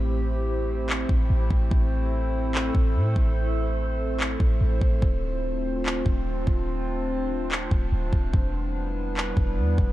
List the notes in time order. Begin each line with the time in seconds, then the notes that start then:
Already playing: A1 A3 C4 E4 G4 C5
0.90 clap
1.09 A1, kick
1.30 A1
1.50 A1, kick
1.71 A1 A4, kick
2.55 clap
2.75 A1, kick
2.96 A2
3.16 A1, kick
4.20 clap
4.40 A1, kick
4.61 A1
4.81 A1, kick
5.02 D1 C4 D4 F4, kick
5.86 clap
6.06 D1, kick
6.47 D1, kick
7.52 clap
7.71 D1, kick
7.92 D1
8.13 D1, kick
8.33 E1 G3 B3 E4 B4, kick
9.17 clap
9.37 E1, kick
9.58 E2
9.78 E1, kick